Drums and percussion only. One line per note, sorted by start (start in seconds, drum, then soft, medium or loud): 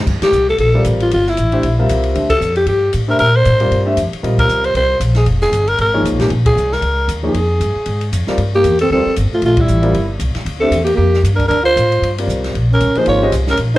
0.07 kick medium
0.07 crash medium
0.22 snare medium
0.22 ride medium
0.32 hi-hat pedal soft
0.58 ride medium
0.84 hi-hat pedal soft
0.84 ride medium
1.00 ride soft
1.11 ride medium
1.26 snare soft
1.37 hi-hat pedal soft
1.37 ride soft
1.52 ride soft
1.63 ride medium
1.89 hi-hat pedal soft
1.89 ride medium
2.04 ride soft
2.15 ride soft
2.30 kick medium
2.30 ride medium
2.41 hi-hat pedal soft
2.56 ride soft
2.67 ride medium
2.93 hi-hat pedal soft
2.93 ride medium
3.19 ride medium
3.45 hi-hat pedal soft
3.45 ride medium
3.60 ride soft
3.72 ride soft
3.97 hi-hat pedal soft
3.97 ride medium
4.13 ride soft
4.24 ride medium
4.38 kick medium
4.38 ride medium
4.49 hi-hat pedal soft
4.64 ride soft
4.75 ride medium
5.01 hi-hat pedal medium
5.01 ride medium
5.15 snare soft
5.15 ride soft
5.26 ride medium
5.42 snare soft
5.53 hi-hat pedal soft
5.53 ride medium
5.67 ride soft
5.78 ride medium
6.05 hi-hat pedal soft
6.05 ride medium
6.19 snare medium
6.19 ride soft
6.30 ride soft
6.45 kick medium
6.45 ride medium
6.57 hi-hat pedal soft
6.72 snare soft
6.82 ride medium
7.09 hi-hat pedal medium
7.09 ride medium
7.34 ride medium
7.61 hi-hat pedal soft
7.61 ride medium
7.86 ride medium
8.01 ride soft
8.13 hi-hat pedal soft
8.13 ride medium
8.27 snare soft
8.38 ride medium
8.64 hi-hat pedal soft
8.64 ride medium
8.79 ride medium
9.16 hi-hat pedal medium
9.16 ride medium
9.42 ride soft
9.57 kick medium
9.57 ride medium
9.68 hi-hat pedal soft
9.83 ride soft
9.94 ride medium
10.20 hi-hat pedal soft
10.20 ride medium
10.35 snare soft
10.35 ride soft
10.46 ride medium
10.72 hi-hat pedal soft
10.72 ride medium
10.86 ride medium
11.14 snare soft
11.24 hi-hat pedal soft
11.24 ride medium
11.39 kick medium
11.39 ride soft
11.51 ride medium
11.77 hi-hat pedal soft
11.77 ride medium
11.92 ride soft
12.03 ride medium
12.18 ride medium
12.29 hi-hat pedal medium
12.44 snare soft
12.44 ride soft
12.55 ride soft
12.80 hi-hat pedal soft
12.80 ride medium
12.95 ride soft
13.06 ride medium
13.32 hi-hat pedal medium
13.32 ride medium
13.47 snare soft
13.57 ride medium